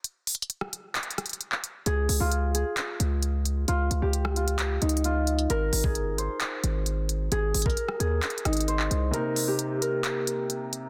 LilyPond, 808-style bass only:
\new Staff \with { instrumentName = "808-style bass" } { \clef bass \time 4/4 \key aes \major \tempo 4 = 132 r1 | des,8 des,16 des,4 r8. des,4. | des,8 des,16 des,4.~ des,16 des,4. | aes,,8 aes,,8 g,,16. aes,,16. r8. aes,,4. |
aes,,8 aes,,8 r8 ees,8 r8 aes,,4 c,8 | r1 | }